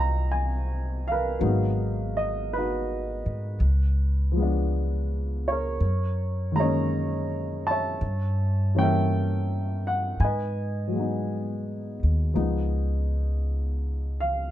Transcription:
Already playing: C2 D#3 G#3 C4 D#4 F4 C5 D#5 F5 G5
0.00 A#5
0.31 G#5
1.08 A#4 F5
1.12 B4
1.39 G#1 F#3 G#3 B3 D#4
2.17 D#5
2.53 B4
2.57 D#4 F#4
3.26 G#2
3.60 C#2
4.32 F3
4.36 G#3 B3
4.42 D4
5.48 C#5
5.52 A#4
5.80 F#2
6.52 D#3 G#3 A#5
6.59 A#3 C#4 C#5 D#5
7.67 A5
7.71 C#5 E5
8.01 G2
8.75 E3 G3 A#3 C#4 G5
8.83 A#4 E5
9.87 F#5
10.20 G#2 G#5
10.24 B4 D#5
10.88 F#3
10.92 G#3
10.96 B3 D#4
12.03 D#2
12.34 C#2 F3 G#3 B3 D#4
14.20 F5

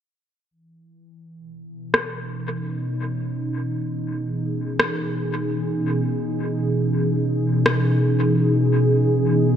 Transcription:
0.51 E3
1.36 B2
1.87 D#4
1.93 C#4, cross-stick
3.90 G#4
4.80 cross-stick
7.66 cross-stick

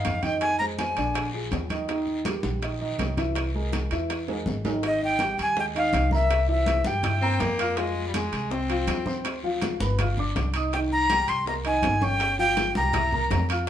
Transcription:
Already playing: D#3 D#4 D#5 F5
0.05 F2, high bongo, low bongo, high conga, high timbale, short guiro
0.23 D#3 D#4 D#5 G5, high bongo, high conga, high timbale, short guiro
0.41 G#5, high bongo, high conga, high timbale, long guiro
0.59 G#3 G#4 C5 A#5, high bongo, high conga
0.78 G#3 G#4 C5 G#5, high bongo, high conga, high timbale, short guiro
0.97 A#1 D3 D4 D5, high bongo, high conga, high timbale, short guiro
1.14 high bongo, high conga, high timbale, long guiro
1.33 F3 F4 G#4, high conga
1.51 D#2, high bongo, low bongo, high conga, high timbale, short guiro
1.70 D#3 D#4 D#5, high bongo, high conga, high timbale, short guiro
1.88 D#3 D#4 D#5, high bongo, high conga, high timbale, long guiro
2.07 high bongo, high conga
2.25 G3 G4 A#4, high bongo, high conga, high timbale, short guiro
2.43 A#1, high bongo, high conga, short guiro
2.62 D#3 D#4 D#5, high bongo, high conga, high timbale, long guiro
2.81 D#3 D#4 D#5, high conga
2.98 C2, high bongo, low bongo, high conga, high timbale, low timbale, short guiro
3.17 E3 E4 E5, high bongo, high conga, high timbale, short guiro
3.35 high bongo, high conga, high timbale, long guiro
3.54 G#3 G#4 A#4, high bongo, high conga
3.72 G#3 G#4, high bongo, high conga, high timbale, short guiro
3.91 E2 E3 E4 E5, high bongo, high conga, high timbale, short guiro
4.10 high bongo, high conga, high timbale, long guiro
4.28 G#3 G#4 A#4, high conga, high timbale
4.46 G#1, high bongo, low bongo, high conga, short guiro
4.65 D#3 D#4 D#5, high bongo, high conga, low timbale, short guiro
4.83 D#3 D#4 D#5, high bongo, high conga, high timbale, long guiro
5.02 G5, high conga
5.19 G3 G4 G5, high bongo, high conga, high timbale, short guiro
5.38 D#2, high conga, high timbale, short guiro
5.42 G#5
5.56 G#3 G#4 G5 G#5, high bongo, high conga, long guiro
5.75 D#3 D#4 D#5 F5, high conga, high timbale
5.93 C2, high bongo, low bongo, high conga, high timbale, short guiro
6.11 A#3 A#4 E5 A#5, high conga, short guiro
6.30 high bongo, high conga, high timbale, long guiro
6.48 E3 E4 E5, high conga
6.66 high bongo, high conga, high timbale, short guiro
6.84 G2 G3 G4 G5, high bongo, high conga, short guiro
7.03 E4 E5 E6, high bongo, high conga, low conga, high timbale, long guiro
7.21 A#3 C4 A#4 A#5, high bongo, high conga
7.40 F2 A#3, high bongo, low bongo, high conga, high timbale, short guiro
7.58 F4 F5 F6, high bongo, high conga, high timbale, short guiro
7.77 F3 G#3 F4 F5, high bongo, high conga, high timbale, long guiro
7.96 high conga
8.07 G3
8.14 G#3 G#4 G#5, high bongo, high conga, high timbale, short guiro
8.32 C2, high conga, high timbale, short guiro
8.50 C4 C5 C6, high bongo, high conga, long guiro
8.70 F3 F4 F5, high conga, high timbale
8.87 D2, high bongo, low bongo, high conga, high timbale, short guiro
9.06 C4 C5 C6, high conga, short guiro
9.25 high bongo, high conga, high timbale, long guiro
9.43 F3 F4 F5, high conga
9.62 high bongo, high conga, high timbale, short guiro
9.80 G1 B3 B4 B5, high conga, short guiro
9.99 F4 F5 F6, high bongo, high conga, low conga, high timbale, long guiro
10.17 D4 D5 D6, high bongo, high conga, low conga
10.35 C2, high bongo, low bongo, high conga, high timbale, short guiro
10.54 D#4 D#5 D#6, high bongo, high conga, high timbale, short guiro
10.72 D#3 D#4 G5, high bongo, high conga, high timbale, long guiro
10.92 A#5, high conga
11.09 G3 G4 G5, high bongo, high conga, high timbale, short guiro
11.28 C2 C6, high conga, high timbale, short guiro
11.46 A#3 A#4 A#5, high bongo, high conga, long guiro
11.64 D#3 D#4 D#5 G#5, high conga, high timbale
11.82 G1, high bongo, low bongo, high conga, high timbale, short guiro
12.01 C#4 C#5 G5 C#6, high conga, short guiro
12.20 high bongo, high conga, high timbale, long guiro
12.39 F3 F4 F5 G5, high conga
12.57 high bongo, high conga, high timbale, short guiro
12.75 C2 G3 G4 G5 A#5, high bongo, high conga, short guiro
12.93 E4 E5 E6, high bongo, high conga, low conga, high timbale, long guiro
13.12 A#3 A#4 A#5, high bongo, high conga, low conga
13.31 F2, high bongo, low bongo, high conga, high timbale, low timbale, short guiro
13.49 F4 F5 F6, high bongo, high conga, high timbale, short guiro

